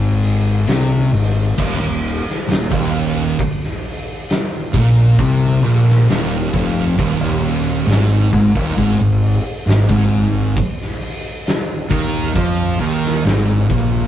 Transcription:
Already playing: fingered electric bass G#1, distorted electric guitar G#2
0.23 open hi-hat
0.67 fingered electric bass C2, distorted electric guitar C3, snare, open hi-hat
1.13 fingered electric bass G#1, distorted electric guitar G#2, open hi-hat
1.57 fingered electric bass D#1, distorted electric guitar D#2, kick, crash
1.80 fingered electric bass D#1, distorted electric guitar D#2
2.04 open hi-hat
2.29 snare
2.48 fingered electric bass D#1, distorted electric guitar D#2, snare, open hi-hat
2.71 fingered electric bass D#1, distorted electric guitar D#2, kick
2.95 open hi-hat
3.39 kick, open hi-hat
3.64 snare
3.84 open hi-hat
4.29 snare, open hi-hat
4.74 fingered electric bass A#1, distorted electric guitar A#2, kick, open hi-hat
5.19 fingered electric bass C2, distorted electric guitar C3, kick, open hi-hat
5.63 fingered electric bass A#1, distorted electric guitar A#2, open hi-hat
5.89 snare
6.08 fingered electric bass D#1, distorted electric guitar D#2, snare, open hi-hat
6.53 fingered electric bass F1, distorted electric guitar F2, kick, open hi-hat
6.99 fingered electric bass D#1, distorted electric guitar D#2, kick, open hi-hat
7.20 fingered electric bass D#1, distorted electric guitar D#2
7.44 open hi-hat
7.88 fingered electric bass G#1, distorted electric guitar G#2, snare, open hi-hat
8.32 fingered electric bass G#1, distorted electric guitar G#2, kick, open hi-hat
8.55 fingered electric bass D#1, distorted electric guitar D#2, kick
8.77 fingered electric bass G#1, distorted electric guitar G#2, kick, open hi-hat
9.00 fingered electric bass G#1, distorted electric guitar G#2
9.23 open hi-hat
9.67 fingered electric bass G#1, distorted electric guitar G#2, snare, open hi-hat
9.89 fingered electric bass G#1, distorted electric guitar G#2, kick
10.12 open hi-hat
10.57 kick, open hi-hat
10.81 snare
11.01 open hi-hat
11.46 snare, open hi-hat
11.90 fingered electric bass D#2, distorted electric guitar D#3, kick, open hi-hat
12.35 fingered electric bass F2, distorted electric guitar F3, kick, open hi-hat
12.79 fingered electric bass D#2, distorted electric guitar D#3, open hi-hat
13.05 snare
13.25 fingered electric bass G#1, distorted electric guitar G#2, snare, open hi-hat
13.70 fingered electric bass A#1, distorted electric guitar A#2, kick, open hi-hat

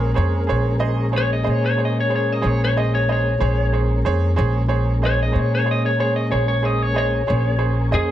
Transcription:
Already playing: upright bass A#1, tonewheel organ G#3 A#3 C#4, lead electric guitar A#4
0.14 upright bass F2, upright piano G#4 C5 C#5
0.47 upright bass A#1, upright piano G#4 C5 C#5
0.79 upright piano G#4 C5 D#5
1.12 upright piano G#4 C5 C#5
1.18 lead electric guitar C#5
1.33 lead electric guitar D#5
1.43 upright bass A#2, upright piano G#4 C5 D#5
1.50 lead electric guitar C#5
1.66 lead electric guitar C#5
1.77 upright piano G#4 C5 C#5
1.85 lead electric guitar D#5
2.00 lead electric guitar C#5
2.09 upright piano G#4 C5 C#5
2.16 lead electric guitar C#5
2.33 lead electric guitar D#5
2.42 upright bass A#1, upright piano G#4 C5 C#5
2.47 lead electric guitar C#5
2.65 lead electric guitar C#5
2.77 upright piano G#4 C5 D#5, lead electric guitar D#5
2.95 lead electric guitar C#5
3.09 upright piano G#4 C5 D#5, lead electric guitar C#5
3.38 upright bass A#1, tonewheel organ G#3 A#3 C#4, upright piano G#4 C5 C#5
3.73 upright piano G#4 C5 C#5
4.05 upright bass F2, upright piano G#4 C5 C#5
4.36 upright bass A#1, upright piano G#4 C5 C#5
4.69 upright piano G#4 C5 C#5
5.02 upright piano G#4 C5 D#5
5.06 lead electric guitar C#5
5.23 lead electric guitar D#5
5.32 upright bass A#2, upright piano G#4 C5 C#5
5.39 lead electric guitar C#5
5.55 lead electric guitar C#5
5.64 upright piano G#4 C5 C#5
5.71 lead electric guitar D#5
5.86 lead electric guitar C#5
5.99 upright piano G#4 C5 C#5, lead electric guitar C#5
6.16 lead electric guitar D#5
6.31 upright bass A#1, upright piano G#4 C5 C#5, lead electric guitar C#5
6.48 lead electric guitar C#5
6.63 upright piano G#4 C5 C#5, lead electric guitar D#5
6.82 lead electric guitar C#5
6.94 upright piano G#4 C5 D#5, lead electric guitar C#5
7.27 upright bass A#1, tonewheel organ A#3 C#4 G#4, upright piano G#4 C5 C#5
7.58 upright piano G#4 C5 C#5
7.91 upright bass F2, upright piano G#4 C5 D#5, lead electric guitar G#4

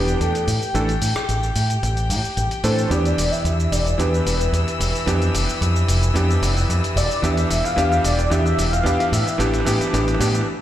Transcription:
Already playing: fingered electric bass E1, electric grand piano E3 B3 D4 G4, string section G4 G5, analog synth lead B4
0.08 closed hi-hat, shaker
0.20 fingered electric bass E2, analog synth lead A4, closed hi-hat, mid tom, shaker
0.35 closed hi-hat, shaker
0.47 fingered electric bass A2, open hi-hat, shaker
0.62 shaker
0.74 fingered electric bass A1, electric grand piano E3 A3 D4 A4, closed hi-hat, mid tom, shaker
0.89 closed hi-hat, shaker
1.01 fingered electric bass A2, open hi-hat, shaker
1.16 muted fingered electric bass stroke, cross-stick, shaker
1.29 fingered electric bass A1, closed hi-hat, mid tom, shaker
1.43 shaker
1.55 fingered electric bass A2, open hi-hat, shaker
1.70 closed hi-hat, shaker
1.83 fingered electric bass A1, closed hi-hat, mid tom, shaker
1.97 closed hi-hat, shaker
2.09 fingered electric bass A2, open hi-hat, shaker
2.24 muted fingered electric bass stroke, open hi-hat, shaker
2.37 fingered electric bass A1, closed hi-hat, mid tom, shaker
2.51 closed hi-hat, shaker
2.63 fingered electric bass A2, electric grand piano E3 A3 D4 A4, analog synth lead C5, open hi-hat, shaker
2.79 shaker
2.89 fingered electric bass E2, electric grand piano E3 B3 D4 G4, string section E3 E6, analog synth lead D5, closed hi-hat, mid tom, shaker
3.05 closed hi-hat, shaker
3.17 fingered electric bass E1, open hi-hat, mid tom, shaker
3.31 analog synth lead E5, shaker
3.44 fingered electric bass E2, closed hi-hat, mid tom, shaker
3.60 shaker
3.72 fingered electric bass E1, analog synth lead D5, open hi-hat, mid tom, shaker
3.86 closed hi-hat, shaker
3.98 fingered electric bass E2, electric grand piano E3 B3 D4 G4, analog synth lead B4, closed hi-hat, mid tom, shaker
4.14 shaker
4.26 fingered electric bass E1, open hi-hat, mid tom, shaker
4.40 closed hi-hat, shaker
4.52 fingered electric bass E2, closed hi-hat, mid tom, shaker
4.68 closed hi-hat, shaker
4.80 fingered electric bass E1, open hi-hat, mid tom, shaker
4.95 shaker
5.06 fingered electric bass F2, electric grand piano E3 B3 D4 G4, closed hi-hat, mid tom, shaker
5.22 closed hi-hat, shaker
5.34 fingered electric bass F1, open hi-hat, mid tom, shaker
5.48 muted fingered electric bass stroke, shaker
5.61 fingered electric bass F2, closed hi-hat, mid tom, shaker
5.76 shaker
5.88 fingered electric bass F1, open hi-hat, mid tom, shaker
6.03 closed hi-hat, shaker
6.14 fingered electric bass F2, electric grand piano E3 B3 D4 G4, closed hi-hat, mid tom, shaker
6.30 shaker
6.42 fingered electric bass F1, open hi-hat, mid tom, shaker
6.57 open hi-hat, shaker
6.69 fingered electric bass F2, closed hi-hat, mid tom, shaker
6.84 closed hi-hat, shaker
6.96 fingered electric bass E1, analog synth lead D5, open hi-hat, mid tom, shaker
7.11 shaker
7.22 fingered electric bass E2, electric grand piano E3 B3 D4 G4, analog synth lead E5, closed hi-hat, mid tom, shaker
7.37 closed hi-hat, mid tom, shaker
7.50 fingered electric bass E1, open hi-hat, mid tom, shaker
7.65 analog synth lead F5, mid tom, shaker
7.76 fingered electric bass E2, electric grand piano E3 B3 D4 G4, closed hi-hat, mid tom, shaker
7.92 mid tom, shaker
8.04 fingered electric bass E1, analog synth lead D5, open hi-hat, mid tom, shaker
8.19 closed hi-hat, mid tom, shaker
8.30 fingered electric bass E2, electric grand piano E3 B3 D4 G4, analog synth lead E5, closed hi-hat, mid tom, shaker
8.46 mid tom, shaker
8.58 fingered electric bass E1, open hi-hat, mid tom, shaker
8.72 analog synth lead F5, mid tom, shaker
8.83 fingered electric bass E2, electric grand piano E3 B3 D4 G4, closed hi-hat, mid tom, shaker
9.00 closed hi-hat, mid tom, shaker
9.12 fingered electric bass A2, analog synth lead E5, open hi-hat, mid tom, shaker
9.27 mid tom, shaker
9.38 fingered electric bass A1, electric grand piano E3 B3 D4 G4, closed hi-hat, mid tom, shaker
9.47 mid tom
9.54 closed hi-hat, mid tom, shaker
9.60 mid tom
9.65 fingered electric bass A2, electric grand piano E3 B3 D4 G4, open hi-hat, mid tom, shaker
9.73 mid tom
9.80 muted fingered electric bass stroke, closed hi-hat, mid tom, shaker
9.87 mid tom
9.93 fingered electric bass A1, electric grand piano E3 B3 D4 G4, closed hi-hat, mid tom, shaker
10.01 mid tom
10.08 closed hi-hat, mid tom, shaker
10.14 mid tom
10.20 fingered electric bass A2, electric grand piano E3 B3 D4 G4, open hi-hat, mid tom, shaker
10.28 mid tom
10.35 closed hi-hat, mid tom, shaker
10.41 mid tom

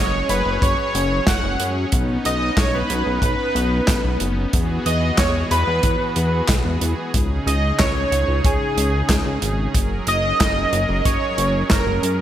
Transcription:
Already playing: analog synth bass F#1, analog synth pad F#3 C#4 G#4 C#5, supersaw synth C#5, fm electric piano C#6
0.29 analog synth bass F#1, supersaw synth B4, fm electric piano B5, closed hi-hat
0.46 analog synth bass F#1
0.62 analog synth bass F#1, supersaw synth C#5, fm electric piano C#6, kick, closed hi-hat
0.78 supersaw synth C#5, fm electric piano C#6
0.95 analog synth bass F#1, closed hi-hat
1.27 analog synth bass F#1, supersaw synth F#5, fm electric piano F#6, kick, snare, clap, closed hi-hat
1.44 analog synth bass F#1
1.60 analog synth bass F#2, closed hi-hat
1.92 analog synth bass B1, analog synth pad B3 D#4, kick, closed hi-hat
2.25 analog synth bass B1, supersaw synth D#5, fm electric piano D#6, closed hi-hat
2.57 analog synth bass B1, supersaw synth C#5, fm electric piano C#6, kick, snare, clap, closed hi-hat
2.74 supersaw synth B4, fm electric piano B5
2.90 analog synth bass B1, closed hi-hat
3.06 analog synth bass B1
3.22 analog synth bass B1, supersaw synth B4, fm electric piano B5, kick, closed hi-hat
3.55 analog synth bass B1, closed hi-hat
3.88 analog synth bass B1, kick, snare, clap, closed hi-hat
4.04 analog synth bass B1
4.20 analog synth bass F#1, closed hi-hat
4.53 analog synth bass E2, analog synth pad E3 F#4 G#4, kick, closed hi-hat
4.86 analog synth bass E2, supersaw synth D#5, fm electric piano D#6, closed hi-hat
5.18 analog synth bass E2, supersaw synth C#5, fm electric piano C#6, kick, snare, clap, closed hi-hat
5.51 analog synth bass E2, supersaw synth B4, fm electric piano B5, closed hi-hat
5.67 analog synth bass E2
5.83 analog synth bass E2, kick, closed hi-hat
6.16 analog synth bass E2, closed hi-hat
6.48 analog synth bass B1, kick, snare, clap, closed hi-hat
6.65 analog synth bass E2
6.81 analog synth bass E2, closed hi-hat
7.14 analog synth bass C#2, analog synth pad C#3 C#4 D#4, kick, closed hi-hat
7.46 analog synth bass C#2, supersaw synth D#5, fm electric piano D#6, closed hi-hat
7.79 analog synth bass C#2, supersaw synth C#5, fm electric piano C#6, kick, snare, clap, closed hi-hat
7.96 supersaw synth C#5, fm electric piano C#6
8.12 analog synth bass C#2, closed hi-hat
8.28 analog synth bass C#2
8.44 analog synth bass C#2, supersaw synth G#4, fm electric piano G#5, kick, closed hi-hat
8.77 analog synth bass C#2, closed hi-hat
9.09 analog synth bass C#2, kick, snare, clap, closed hi-hat
9.26 analog synth bass C#2
9.42 analog synth bass G#1, closed hi-hat
9.74 analog synth bass F#1, analog synth pad F#3 A#4, kick, closed hi-hat
10.07 analog synth bass F#1, supersaw synth D#5, fm electric piano D#6, closed hi-hat
10.40 analog synth bass F#1, kick, snare, clap, closed hi-hat
10.73 analog synth bass F#1, closed hi-hat
10.89 analog synth bass F#1
11.05 analog synth bass F#1, supersaw synth C#5, fm electric piano C#6, kick, closed hi-hat
11.38 analog synth bass F#1, closed hi-hat
11.70 analog synth bass F#1, supersaw synth A#4, fm electric piano A#5, kick, snare, clap, closed hi-hat
11.87 analog synth bass F#1
12.03 analog synth bass F#2, closed hi-hat

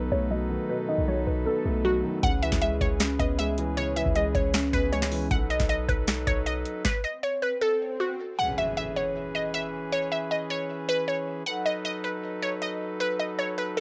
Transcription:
Already playing: 808-style bass B1, felt piano B2 D#3 F#3 B3, pipe organ F#3 D#4 A4 B4
0.12 808-style bass B1, felt piano A3, synth pluck C#5
0.31 felt piano F#3, synth pluck D#5
0.50 felt piano D#3
0.69 felt piano B2, synth pluck B4
0.89 felt piano D#3, synth pluck D#5
0.98 808-style bass B1
1.08 felt piano F#3, synth pluck C#5
1.27 808-style bass B1, synth pluck B4
1.46 felt piano B3, synth pluck A4
1.65 808-style bass B1, felt piano A3
1.85 felt piano F#3, synth pluck F#4
2.04 felt piano D#3
2.23 808-style bass C#2, felt piano C#3, pipe organ E3 C#4 G#4, synth pluck F#5, kick, closed hi-hat
2.42 felt piano E3, synth pluck E5, closed hi-hat
2.52 808-style bass C#2, kick, snare
2.62 felt piano G#3, synth pluck E5, closed hi-hat
2.81 808-style bass C#2, synth pluck C#5, kick, closed hi-hat
3.00 felt piano C#4, finger snap, snare, closed hi-hat
3.19 808-style bass C#2, felt piano B3, synth pluck D#5, kick, closed hi-hat
3.39 felt piano G#3, synth pluck E5, closed hi-hat
3.58 felt piano E3, closed hi-hat
3.77 felt piano C#3, synth pluck C#5, closed hi-hat
3.96 felt piano E3, synth pluck E5, closed hi-hat
4.06 808-style bass C#2, kick
4.15 felt piano G#3, synth pluck D#5, closed hi-hat
4.35 808-style bass C#2, synth pluck C#5, kick, closed hi-hat
4.54 felt piano C#4, finger snap, snare, closed hi-hat
4.73 808-style bass C#2, felt piano B3, synth pluck B4, kick, closed hi-hat
4.92 felt piano G#3, synth pluck C#5, closed hi-hat
5.02 finger snap, snare
5.12 felt piano E3, open hi-hat
5.31 808-style bass B1, pipe organ F#3 D#4 A4 B4, synth pluck F#5, kick, closed hi-hat
5.50 synth pluck D#5, closed hi-hat
5.60 808-style bass B1, kick, snare
5.69 synth pluck D#5, closed hi-hat
5.89 808-style bass B1, synth pluck B4, kick, closed hi-hat
6.07 finger snap, snare, closed hi-hat
6.27 808-style bass B1, synth pluck C#5, kick, closed hi-hat
6.46 synth pluck D#5, closed hi-hat
6.65 closed hi-hat
6.85 synth pluck B4, kick, snare, swell
7.04 synth pluck D#5
7.23 synth pluck C#5
7.42 synth pluck B4
7.62 synth pluck A4
8.00 synth pluck F#4
8.39 pipe organ E3 C#4 G#4 B4, synth pluck F#5, impact
8.58 synth pluck E5
8.77 synth pluck E5
8.96 synth pluck C#5
9.35 synth pluck D#5
9.54 synth pluck E5
9.92 synth pluck C#5
10.12 synth pluck E5
10.31 synth pluck D#5
10.50 synth pluck C#5
10.89 synth pluck B4
11.08 synth pluck C#5
11.46 pipe organ F#3 D#4 A4 B4, synth pluck F#5
11.66 synth pluck D#5
11.85 synth pluck D#5
12.04 synth pluck B4
12.42 synth pluck C#5
12.62 synth pluck D#5
13.00 synth pluck B4
13.19 synth pluck D#5
13.39 synth pluck C#5
13.58 synth pluck B4
13.77 synth pluck A4

